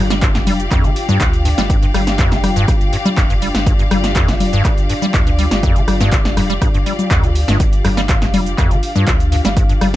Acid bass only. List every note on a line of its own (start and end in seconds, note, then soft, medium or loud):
0.10 0.14 G3 loud
0.22 0.29 G2 medium
0.35 0.39 G2 medium
0.47 0.54 G3 medium
0.71 0.86 F2 loud
0.84 0.91 D3 medium
1.09 1.19 G2 loud
1.21 1.25 A#2 medium
1.45 1.49 G2 medium
1.58 1.62 G3 loud
1.70 1.77 G2 medium
1.82 1.86 G2 medium
1.94 2.01 G3 medium
2.19 2.33 F2 loud
2.32 2.38 D3 medium
2.56 2.66 G2 loud
2.68 2.72 A#2 medium
2.93 2.97 G2 medium
3.05 3.09 G3 loud
3.17 3.24 G2 medium
3.30 3.34 G2 medium
3.42 3.49 G3 medium
3.67 3.74 G2 medium
3.79 3.83 G2 medium
3.91 3.98 G3 medium
4.16 4.30 F2 loud
4.28 4.35 D3 medium
4.53 4.63 G2 loud
4.65 4.69 A#2 medium
4.89 4.94 G2 medium
5.02 5.06 G3 loud
5.14 5.21 G2 medium
5.27 5.31 G2 medium
5.39 5.46 G3 medium
5.63 5.77 F2 loud
5.76 5.83 D3 medium
6.01 6.10 G2 loud
6.12 6.17 A#2 medium
6.37 6.41 G2 medium
6.50 6.54 G3 loud
6.62 6.69 G2 medium
6.74 6.78 G2 medium
6.86 6.93 G3 medium
7.11 7.25 F2 loud
7.23 7.30 D3 medium
7.48 7.58 G2 loud
7.85 7.89 G2 medium
7.97 8.01 G3 loud
8.09 8.16 G2 medium
8.22 8.26 G2 medium
8.34 8.41 G3 medium
8.58 8.73 F2 loud
8.71 8.78 D3 medium
8.96 9.05 G2 loud
9.08 9.12 A#2 medium
9.32 9.36 G2 medium
9.45 9.49 G3 loud
9.57 9.64 G2 medium
9.69 9.73 G2 medium
9.81 9.88 G3 medium